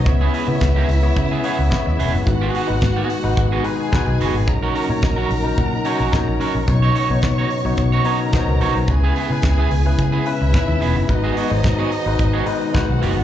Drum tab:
HH |xoxoxoxo|xoxoxoxo|xoxoxoxo|xoxoxoxo|
SD |--o---o-|--o---o-|--o---o-|--o---o-|
BD |o-o-o-o-|o-o-o-o-|o-o-o-o-|o-o-o-o-|

HH |xoxoxoxo|xoxoxoxo|
SD |--o---o-|--o---o-|
BD |o-o-o-o-|o-o-o-o-|